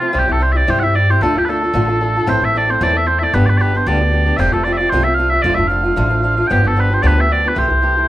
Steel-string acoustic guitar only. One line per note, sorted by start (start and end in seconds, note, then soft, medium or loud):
0.02 0.12 F3 soft
0.02 0.13 A3 soft
0.02 0.12 C4 medium
0.02 0.14 F4 soft
0.13 0.28 C3 medium
0.13 0.28 G3 medium
0.13 0.28 C4 loud
0.13 0.28 E4 medium
0.13 0.26 G4 medium
0.27 0.39 C4 soft
0.27 0.40 E4 soft
0.27 0.40 G4 medium
0.39 0.55 G3 medium
0.39 0.55 C4 medium
0.39 0.54 E4 medium
0.39 0.52 G4 medium
0.53 0.66 C4 soft
0.53 0.67 E4 soft
0.53 0.67 G4 soft
0.67 0.82 C3 medium
0.67 0.82 G3 medium
0.67 0.82 C4 medium
0.67 0.82 E4 loud
0.67 0.80 G4 medium
0.81 0.95 C4 soft
0.81 0.95 E4 medium
0.81 0.94 G4 soft
0.96 1.10 G3 medium
0.96 1.10 C4 soft
0.96 1.10 E4 medium
0.96 1.09 G4 soft
1.10 1.23 C4 soft
1.10 1.22 E4 soft
1.10 1.22 G4 medium
1.22 1.36 D3 medium
1.22 1.36 A3 medium
1.22 1.36 D4 medium
1.22 1.36 F4 medium
1.22 1.35 A4 medium
1.36 1.47 D4 soft
1.36 1.48 F4 medium
1.36 1.48 A4 medium
1.49 1.63 A3 medium
1.49 1.63 D4 medium
1.49 1.62 F4 medium
1.49 1.61 A4 medium
1.63 1.73 D4 soft
1.63 1.74 F4 medium
1.63 1.75 A4 medium
1.73 1.88 D3 medium
1.73 1.89 A3 medium
1.73 1.89 D4 medium
1.73 1.87 F4 loud
1.73 1.86 A4 medium
1.88 2.00 D4 soft
1.88 2.00 F4 medium
1.88 2.00 A4 medium
2.00 2.15 A3 soft
2.00 2.15 D4 medium
2.00 2.15 F4 medium
2.00 2.15 A4 medium
2.16 2.27 D4 soft
2.16 2.28 F4 medium
2.16 2.27 A4 medium
2.26 2.41 A2 medium
2.26 2.42 E3 medium
2.26 2.42 A3 medium
2.26 2.42 C4 loud
2.26 2.41 E4 medium
2.26 2.41 A4 medium
2.42 2.53 A3 soft
2.42 2.54 C4 soft
2.42 2.54 E4 medium
2.42 2.54 A4 medium
2.54 2.68 A3 medium
2.54 2.68 C4 medium
2.54 2.67 E4 medium
2.54 2.66 A4 medium
2.67 2.80 A3 soft
2.67 2.80 C4 medium
2.67 2.80 E4 soft
2.67 2.80 A4 medium
2.81 2.95 A2 loud
2.81 2.95 E3 loud
2.81 2.94 A3 medium
2.81 2.94 C4 loud
2.81 2.93 E4 medium
2.81 2.92 A4 medium
2.93 3.04 A3 soft
2.93 3.04 C4 soft
2.93 3.05 E4 soft
2.93 3.06 A4 medium
3.05 3.20 A3 medium
3.05 3.21 C4 soft
3.05 3.20 E4 medium
3.05 3.19 A4 medium
3.20 3.34 A3 soft
3.20 3.34 C4 soft
3.20 3.33 E4 medium
3.20 3.33 A4 soft
3.33 3.48 G2 medium
3.33 3.48 D3 medium
3.33 3.48 G3 medium
3.33 3.48 B3 loud
3.33 3.47 D4 medium
3.33 3.47 G4 medium
3.48 3.59 D4 medium
3.48 3.60 G4 soft
3.59 3.74 G3 medium
3.59 3.74 B3 medium
3.59 3.74 D4 medium
3.59 3.73 G4 medium
3.74 3.86 G3 soft
3.74 3.86 B3 soft
3.74 3.87 D4 medium
3.74 3.87 G4 medium
3.86 4.01 G2 medium
3.86 4.01 D3 medium
3.86 4.01 G3 medium
3.86 4.01 B3 medium
3.86 4.00 D4 medium
3.86 4.00 G4 medium
4.01 4.10 G3 soft
4.01 4.11 B3 soft
4.01 4.12 D4 medium
4.01 4.12 G4 medium
4.11 4.26 G3 soft
4.11 4.26 B3 medium
4.11 4.25 D4 medium
4.11 4.24 G4 medium
4.26 4.38 G3 soft
4.26 4.39 B3 medium
4.26 4.39 D4 medium
4.26 4.39 G4 medium
4.38 4.53 F2 medium
4.38 4.53 C3 medium
4.38 4.53 G3 medium
4.38 4.52 A3 medium
4.38 4.52 C4 loud
4.38 4.51 F4 loud
4.52 4.64 G3 soft
4.52 4.64 A3 medium
4.52 4.65 C4 soft
4.52 4.65 F4 medium
4.65 4.80 G3 medium
4.65 4.80 A3 medium
4.65 4.79 C4 medium
4.65 4.79 F4 medium
4.80 4.92 G3 soft
4.80 4.92 A3 soft
4.80 4.92 C4 soft
4.80 4.92 F4 medium
4.92 5.06 F2 medium
4.92 5.07 C3 medium
4.92 5.06 G3 medium
4.92 5.06 A3 medium
4.92 5.05 C4 loud
4.92 5.04 F4 loud
5.05 5.17 G3 soft
5.05 5.17 A3 soft
5.05 5.18 C4 soft
5.05 5.18 F4 medium
5.18 5.32 G3 medium
5.18 5.33 A3 medium
5.18 5.32 C4 medium
5.18 5.31 F4 medium
5.32 5.44 G3 soft
5.32 5.44 A3 soft
5.32 5.45 C4 medium
5.32 5.45 F4 soft
5.44 5.59 F2 medium
5.44 5.59 D3 medium
5.44 5.58 F3 medium
5.44 5.57 A3 loud
5.44 5.57 D4 medium
5.44 5.56 F4 loud
5.57 5.68 F3 soft
5.57 5.69 A3 soft
5.57 5.69 D4 medium
5.57 5.70 F4 medium
5.69 5.85 F3 medium
5.69 5.84 A3 medium
5.69 5.84 D4 medium
5.69 5.83 F4 medium
5.84 5.95 F3 soft
5.84 5.96 A3 soft
5.84 5.96 D4 medium
5.84 5.96 F4 medium
5.96 6.11 F2 loud
5.96 6.11 D3 medium
5.96 6.10 F3 loud
5.96 6.09 A3 medium
5.96 6.09 D4 loud
5.96 6.08 F4 loud
6.09 6.21 F3 medium
6.09 6.22 A3 medium
6.09 6.23 D4 medium
6.09 6.23 F4 medium
6.22 6.38 F3 medium
6.22 6.37 A3 medium
6.22 6.37 D4 medium
6.22 6.36 F4 medium
6.37 6.49 F3 soft
6.37 6.50 A3 soft
6.37 6.50 D4 medium
6.37 6.50 F4 medium
6.49 6.64 G2 medium
6.49 6.65 D3 medium
6.49 6.65 F3 medium
6.49 6.63 B3 medium
6.49 6.63 D4 medium
6.49 6.62 G4 loud
6.64 6.74 F3 soft
6.64 6.75 B3 soft
6.64 6.76 D4 medium
6.76 6.91 F3 medium
6.76 6.91 B3 medium
6.76 6.90 D4 medium
6.76 6.89 G4 medium
6.90 7.02 F3 soft
6.90 7.02 B3 soft
6.90 7.02 D4 medium
6.90 7.02 G4 medium
7.03 7.18 G2 medium
7.03 7.18 D3 medium
7.03 7.17 F3 medium
7.03 7.16 B3 medium
7.03 7.16 D4 loud
7.03 7.15 G4 loud
7.16 7.28 F3 soft
7.16 7.28 B3 medium
7.16 7.30 D4 soft
7.16 7.29 G4 medium
7.29 7.44 F3 medium
7.29 7.44 B3 medium
7.29 7.43 D4 medium
7.29 7.42 G4 soft
7.43 7.55 F3 soft
7.43 7.56 B3 medium
7.43 7.56 D4 soft
7.43 7.56 G4 medium
7.55 7.70 C3 medium
7.55 7.70 E3 medium
7.55 7.70 A3 medium
7.55 7.68 E4 medium
7.55 7.67 G4 loud
7.68 7.81 A3 soft
7.68 7.81 E4 medium
7.68 7.82 G4 medium
7.81 7.96 E3 medium
7.81 7.97 A3 medium
7.81 7.96 E4 medium
7.81 7.95 G4 medium
7.96 8.08 A3 medium
7.96 8.07 E4 medium
7.96 8.08 G4 medium